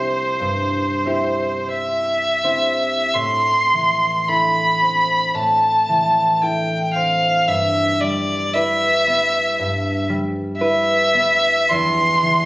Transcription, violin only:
0.00 1.72 C5 soft
1.73 3.16 E5 soft
3.14 4.29 C6 medium
4.28 5.36 B5 medium
5.34 6.43 A5 medium
6.42 6.93 G5 medium
6.93 7.50 F5 medium
7.48 8.02 E5 medium
8.01 8.55 D5 medium
8.53 10.09 E5 medium
10.58 11.70 E5 medium
11.69 12.45 C6 medium

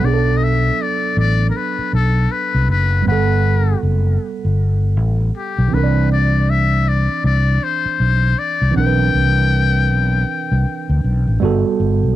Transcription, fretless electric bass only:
0.03 0.70 B1 medium
1.17 1.50 A1 medium
1.79 muted fretless electric bass stroke soft
1.93 2.26 B1 medium
2.55 2.67 C2 medium
2.68 3.02 F#1 medium
3.07 3.74 G1 medium
3.83 4.16 F#1 medium
4.44 4.97 G1 medium
4.97 5.30 A1 medium
5.58 5.71 B1 medium
5.73 7.07 C2 medium
7.24 7.58 C2 medium
7.86 muted fretless electric bass stroke soft
8.00 8.33 B1 medium
8.62 8.74 C2 medium
8.76 9.10 B1 medium
9.14 9.90 C2 medium
9.90 10.23 B1 medium
10.52 10.64 C2 medium
10.89 11.02 D2 medium
11.04 11.25 B1 medium
11.27 11.40 A1 medium
11.42 11.62 G1 loud
11.79 12.00 G1 medium
12.03 12.16 B1 medium

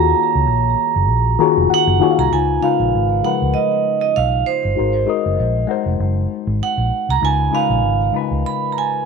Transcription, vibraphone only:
0.00 1.69 A#5 loud
1.74 2.21 F#5 loud
2.19 2.33 A#5 medium
2.33 2.64 G#5 medium
2.62 3.26 F5 medium
3.25 3.56 F#5 medium
3.54 4.00 D#5 medium
4.01 4.16 D#5 medium
4.16 4.45 F5 medium
4.46 5.04 C5 medium
6.63 7.11 F#5 medium
7.10 7.24 A#5 loud
7.25 7.56 G#5 loud
7.55 8.12 F5 medium
8.46 8.71 B5 medium
8.72 8.78 A#5 medium
8.78 9.05 G#5 medium

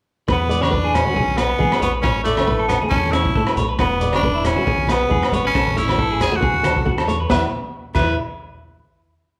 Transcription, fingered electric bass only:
0.29 1.02 E2 medium
1.16 1.53 B1 medium
1.60 1.70 E3 medium
1.81 2.00 A#1 medium
2.04 2.78 A1 medium
2.91 3.28 E2 medium
3.35 3.45 A2 medium
3.56 3.75 B1 medium
3.79 4.53 E1 medium
4.67 5.04 B1 medium
5.11 5.21 E2 medium
5.31 5.50 G#1 medium
5.55 6.29 A1 medium
6.42 6.79 D2 medium
6.86 7.06 D2 medium
7.08 7.28 E2 medium
7.30 7.43 E2 medium
7.95 8.16 E2 medium

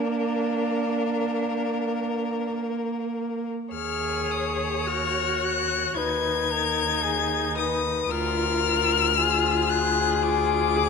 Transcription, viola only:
0.00 3.48 A#3 soft
3.73 4.88 G#4 soft
4.87 5.98 F#4 medium
5.96 8.10 D#4 soft
8.10 9.14 F4 medium
9.16 10.20 F4 medium
10.22 10.78 F4 medium
10.76 10.89 G#4 medium

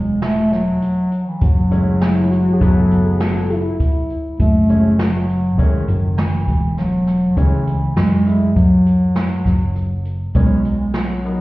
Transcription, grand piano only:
1.71 2.55 E3 medium
1.71 2.55 G#3 medium
1.71 2.55 A3 medium
1.71 2.55 C#4 medium
2.60 3.44 E3 medium
2.60 3.44 F#3 medium
2.60 3.44 A3 medium
2.60 3.44 B3 medium
4.69 4.90 E3 medium
4.69 4.90 G#3 medium
4.69 4.90 A3 medium
4.69 4.90 C#4 medium
5.58 5.79 E3 medium
5.58 5.79 G#3 medium
5.58 5.79 A3 medium
5.58 5.80 C#4 medium
7.37 7.58 E3 medium
7.37 7.58 G#3 medium
7.37 7.58 A3 medium
7.37 7.58 C#4 medium
8.26 8.47 E3 medium
8.26 8.47 G#3 soft
8.26 8.48 A3 soft
8.26 8.48 E4 medium
10.35 10.56 D#3 medium
10.35 10.56 F#3 soft
10.35 10.56 B3 medium
10.35 10.57 C#4 medium
11.25 11.41 D#3 medium
11.25 11.41 F#3 medium
11.25 11.41 B3 soft
11.25 11.41 D#4 medium

